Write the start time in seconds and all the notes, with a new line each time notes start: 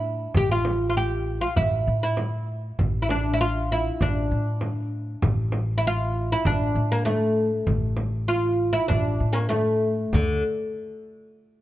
Already playing: A2 E4
0.34 A1 G4, frame drum
0.52 F4
0.65 frame drum
0.90 F4
0.97 G4
1.41 F4
1.56 A1 E4, frame drum
1.87 A2
2.03 E4
2.17 frame drum
2.79 A1, frame drum
3.02 E4
3.09 D4, frame drum
3.34 E4
3.41 F4
3.72 E4
4.01 A1 D4, frame drum
4.31 A2
4.61 frame drum
5.22 A1, frame drum
5.52 frame drum
5.78 E4
5.87 F4
6.32 E4
6.45 A1 D4, frame drum
6.75 A2
6.92 A#3
7.05 A3, frame drum
7.67 A1, frame drum
7.97 frame drum
8.28 F4
8.73 E4
8.88 A1 D4, frame drum
9.20 A2
9.33 A#3 C#4
9.49 A3, frame drum
10.13 D2 D3, frame drum